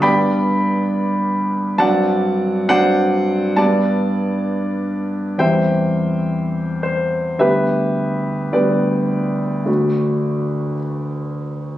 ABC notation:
X:1
M:4/4
L:1/8
Q:1/4=65
K:G
V:1 name="Grand piano"
[dgb]4 [dfa]2 [cdf]2 | [da]4 [ceg]3 c | [GBe]2 [GBd]4 z2 |]
V:2 name="Grand piano" clef=bass
[G,,G,B,D]4 [G,,F,CD]2 [G,,F,CD]2 | [G,,G,B,D]4 [E,,G,CG]4 | [D,,G,B,]2 [D,,G,B,]2 [D,,A,DF]4 |]